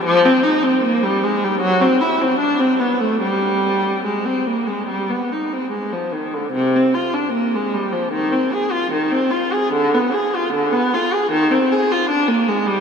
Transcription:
X:1
M:4/4
L:1/16
Q:1/4=75
K:Cm
V:1 name="Viola"
F, C E C B, G, A, G, ^F, C =E C D C =B, =A, | G,4 A, C B, A, G, =B, E C A, F, E, D, | C, C F D B, A, G, F, E, C A F E, C F A | D, =B, A F D, B, F A E, C A F D _B, A, G, |]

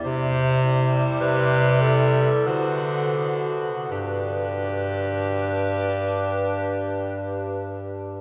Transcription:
X:1
M:3/4
L:1/8
Q:1/4=42
K:G
V:1 name="Clarinet"
c2 B A c2 | B6 |]
V:2 name="Alto saxophone"
z E2 E F F | G6 |]
V:3 name="Tenor saxophone"
z G,2 G, B, B, | D6 |]
V:4 name="Bass clarinet" clef=bass
C,2 C,2 D,2 | G,,6 |]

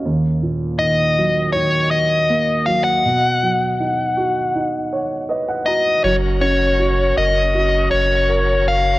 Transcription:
X:1
M:4/4
L:1/16
Q:1/4=80
K:F#
V:1 name="Lead electric guitar"
z4 d4 c2 d4 e f- | f12- f2 d2 | c2 c4 d4 c4 e2 |]
V:2 name="Grand piano"
z16 | z8 z2 c2 d f a2 | z16 |]
V:3 name="Grand piano"
D,,2 A,,2 D,2 F,2 D,4 A,2 F,2 | B,,2 F,2 D2 F2 D4 B2 F2 | F,2 C2 F2 A2 F4 A4 |]
V:4 name="Tonewheel organ"
z16 | z16 | [F,CA]16 |]
V:5 name="Sub bass" clef=bass
z16 | z16 | F,,,6 F,,,4 F,,,6 |]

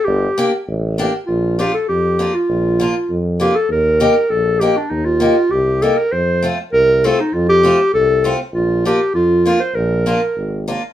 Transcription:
X:1
M:2/4
L:1/16
Q:1/4=99
K:Gm
V:1 name="Clarinet"
G4 z4 | [K:Bb] F2 G A G3 F- | F4- F z G A | B4 A2 G D |
E F3 G2 A B | c2 z2 B2 A E | F G3 A3 z | F2 G2 F3 c |
B6 z2 |]
V:2 name="Steel-string acoustic guitar"
z2 [B,DG]2 z2 [B,DG]2 | [K:Bb] z2 [B,DF]2 z2 [B,DF]2 | z2 [B,DF]2 z2 [B,DF]2 | z2 [B,EG]2 z2 [B,EG]2 |
z2 [B,EG]2 z2 [B,EG]2 | z2 [A,CF]2 z2 [A,CF]2 | z2 [A,CF]2 z2 [A,CF]2 | z2 [B,DF]2 z2 [B,DF]2 |
z2 [B,DF]2 z2 [B,DF]2 |]
V:3 name="Tuba" clef=bass
G,,,2 z2 A,,,4 | [K:Bb] B,,,4 F,,4 | B,,,4 F,,4 | E,,4 B,,,4 |
E,,4 C,,4 | F,,4 C,,4 | F,,4 C,,4 | B,,,4 F,,4 |
B,,,4 _A,,,4 |]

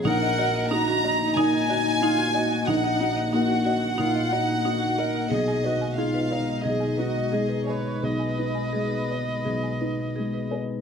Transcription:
X:1
M:4/4
L:1/16
Q:1/4=90
K:Ebm
V:1 name="Violin section"
g4 b4 a8 | g4 g12 | e4 f4 e6 d2 | c12- c2 z2 |]
V:2 name="Marimba"
E e G e E G G z E e G z E G e z | E e G e E G G z E e G z E G e z | A a c a A c c z A a c z A c a z | A a c a A c c z A a c z A c a z |]
V:3 name="Viola"
B4 G2 E6 F2 G2 | E4 G4 F2 E2 G2 B2 | A2 G2 F2 E2 A2 G2 A2 c2 | e12- e2 z2 |]
V:4 name="Analog synth pad"
[B,Ee]16- | [B,Ee]16 | [A,Ee]16- | [A,Ee]16 |]
V:5 name="Felt piano"
B,,,2 e2 E2 e2 B,,2 e2 E2 e2 | B,,,2 E2 B,2 e2 B,,2 e2 E2 e2 | C,,2 e2 E2 e2 C,,2 E2 A,2 e2 | C,,2 E2 A,2 e2 C,,2 E2 A,2 [ce]2 |]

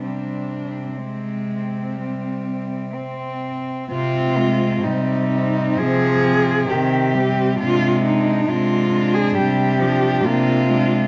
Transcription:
X:1
M:4/4
L:1/16
Q:1/4=65
K:Cm
V:1 name="Cello"
D4 C8- C2 z2 | F4 E4 A4 G4 | F2 E2 F3 A G4 F4 |]
V:2 name="Cello"
C4 C12 | z2 C4 C4 C4 C2 | D2 D4 D4 D4 D2 |]
V:3 name="Cello" clef=bass
G,4 A,4 G,4 C4 | C2 A,2 G,4 F,4 E,2 G,2 | A,4 A,4 G,2 F,2 B,2 A,2 |]
V:4 name="Cello" clef=bass
C,16 | C,4 C,4 C,4 C,4 | C,4 C,4 C,4 C,4 |]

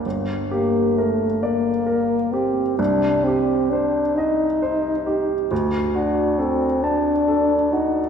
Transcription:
X:1
M:6/8
L:1/8
Q:3/8=44
K:Gm
V:1 name="Grand piano"
G,,, G B d B G | C,, G c e c G | D,, ^F A a A F |]
V:2 name="French horn"
z B, A, B,2 C | D C D E3 | z D C D2 E |]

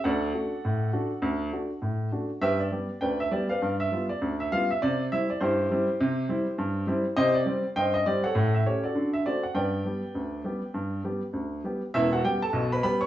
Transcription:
X:1
M:2/4
L:1/16
Q:"Swing 16ths" 1/4=101
K:G
V:1 name="Upright piano"
[Adf]8- | [Adf]4 z4 | [GBe] d3 [Bdg] e d [Bd=f]- | [Bd=f] e2 d2 e f e |
d2 e d [EGc]4- | [EGc]8 | [Gc_e] d3 [ceg] e d [A^cf]- | [A^cf] e c [FAd]2 e d f |
[Bdg]8- | [Bdg]6 z2 | [Ee] [Ff] [Gg] [Aa]2 [Bb] [Bb] [^c^c'] |]
V:2 name="Upright piano"
D,,2 [A,DF]2 A,,2 [A,DF]2 | D,,2 [A,DF]2 A,,2 [A,DF]2 | G,,2 [G,B,G]2 D,,2 [G,B,G]2 | G,,2 [G,B,=F]2 D,,2 [G,B,F]2 |
C,2 [G,CE]2 G,,2 [G,CE]2 | C,2 [G,CE]2 G,,2 [G,CE]2 | C,2 [G,CG]2 G,,2 [G,CG]2 | A,,2 [A,^CG]2 D,2 [A,=CF]2 |
G,,2 [G,B,G]2 D,,2 [G,B,G]2 | G,,2 [G,B,G]2 D,,2 [G,B,G]2 | [E,,,E,,]2 [G,B,]2 [B,,,B,,]2 [G,B,G]2 |]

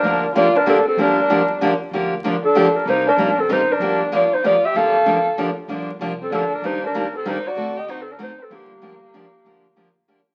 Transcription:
X:1
M:3/4
L:1/8
Q:"Swing" 1/4=191
K:Gm
V:1 name="Clarinet"
B z d B A A | B4 z2 | z3 A2 B | c B2 A c B- |
B z d c d =e | f4 z2 | z3 A A B | c B2 A c d- |
d e (3c A B c A | G6- | G4 z2 |]
V:2 name="Violin"
D z F D D C | D4 z2 | z3 D2 D | E D2 C E D- |
D z F E F G | A4 z2 | z3 C D D | E D2 C E ^F- |
^F G (3E C D E C | B,6- | B,4 z2 |]
V:3 name="Steel-string acoustic guitar"
[D,F,B,DG] z [D,F,B,DG] z [D,F,B,DG] z | [D,F,B,DG] z [D,F,B,DG] z [D,F,B,DG] z | [D,F,B,DG] z [D,F,B,DG] z [D,F,B,DG] z | [C,G,B,EG] z [C,G,B,EG] z [C,G,B,EG] z |
[D,F,B,DG] z [D,F,B,DG] z [D,F,B,DG] z | [D,F,B,DG] z [D,F,B,DG] z [D,F,B,DG] z | [D,F,B,DG] z [D,F,B,DG] z [D,F,B,DG] z | [E,G,B,DG] z [E,G,B,DG] z [E,G,B,DG] z |
[D,A,C^FA] z [D,A,CFA] z [D,A,CFA] z | [D,F,B,DG] z [D,F,B,DG] z [D,F,B,DG] z | [D,F,B,DG] z [D,F,B,DG] z [D,F,B,DG] z |]
V:4 name="Upright bass" clef=bass
D,,6 | G,,,6 | D,,6 | C,,2 B,,,2 A,,,2 |
G,,,6 | D,,6 | G,,,2 C,,2 D,,2 | E,,6 |
D,,6 | G,,,6 | D,,6 |]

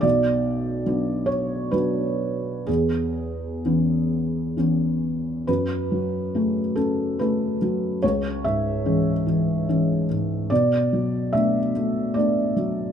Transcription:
X:1
M:3/4
L:1/8
Q:1/4=72
K:F#m
V:1 name="Felt piano"
d3 c B2 | G4 z2 | B3 A B2 | c e4- e |
d2 e2 d2 |]
V:2 name="Felt piano" clef=bass
B,,,2 [F,B,D]2 [F,B,D]2 | E,,2 [E,B,C]2 [E,B,C]2 | F,, F, [C,A,C] C, [C,A,C] F, | C,, G,, [E,G,C] E, [E,G,C] G,, |
B,, F, [A,B,D] A, [A,B,D] F, |]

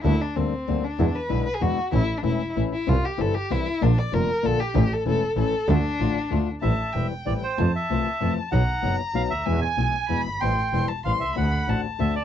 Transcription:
X:1
M:3/4
L:1/16
Q:1/4=191
K:Dm
V:1 name="Bandoneon"
z12 | z12 | z12 | z12 |
z12 | z12 | z12 | [K:Am] e6 z2 d2 c2- |
c2 e8 z2 | ^f6 z2 =f2 e2- | e2 ^g8 z2 | g6 z2 f2 e2 |
^f6 z2 e2 d2 |]
V:2 name="Violin"
E2 D2 C6 D2- | D2 =B4 B ^G ^F4 | E3 D E4 z2 E2 | F2 G2 A2 G2 E4 |
D2 d2 B4 A2 G2- | G2 A2 A4 A4 | D8- D2 z2 | [K:Am] a4 g8 |
a8 a4 | _b12 | ^g8 b4 | c'4 c'2 a2 c'4 |
b4 a8 |]
V:3 name="Nylon-string guitar"
[D,G,B,DA]2 z2 [D,G,B,DA]2 z2 [D,G,B,DA]2 z2 | [=B,,D,^G,=B,E]2 z2 [B,,D,G,B,E]2 z2 [B,,D,G,B,E]2 z2 | [E,A,^CE]2 z2 [E,A,CE]2 z2 [E,A,CE]2 z2 | [C,E,G,CE]2 z2 [C,E,G,CE]2 z2 [C,E,G,CE]2 z2 |
[D,B,DF]2 z2 [D,B,DF]2 z2 [D,B,DF]2 z2 | [E,A,^CE]2 z2 [E,A,CE]2 z2 [E,A,CE]2 z2 | [D,A,DF]2 z2 [D,A,DF]2 z2 [D,A,DF]2 z2 | [K:Am] [E,G,CE]2 z2 [E,G,CE]2 z2 [E,G,CE]2 z2 |
[C,E,A,CF]2 z2 [C,E,A,CF]2 z2 [C,E,A,CF]2 z2 | [B,,^F,B,^D^F]2 z2 [B,,F,B,DF]2 z2 [B,,F,B,DF]2 z2 | [B,,E,^G,B,E]2 z2 [B,,E,G,B,E]2 z2 [B,,E,G,B,E]2 z2 | [E,G,CE]2 z2 [E,G,CE]2 z2 [E,G,CE]2 z2 |
[D,A,C^F]2 z2 [D,A,CF]2 z2 [D,A,CF]2 z2 |]
V:4 name="Double bass" clef=bass
D,,2 z2 D,,2 z2 D,,2 z2 | E,,2 z2 =B,,,2 z2 E,,2 z2 | A,,,2 z2 E,,,2 z2 A,,,2 z2 | C,,2 z2 G,,,2 z2 C,,2 z2 |
B,,,2 z2 F,,,2 z2 B,,,2 z2 | A,,,2 z2 E,,,2 z2 A,,,2 z2 | D,,2 z2 A,,,2 z2 D,,2 z2 | [K:Am] A,,,2 z2 E,,,2 z2 A,,,2 z2 |
F,,2 z2 C,,2 z2 F,,2 z2 | B,,,2 z2 ^F,,,2 z2 B,,,2 D,,2 | E,,2 z2 B,,,2 z2 E,,2 G,,,2 | A,,,2 z2 E,,,2 z2 A,,,2 C,,2 |
D,,2 z2 A,,,2 z2 D,,2 z2 |]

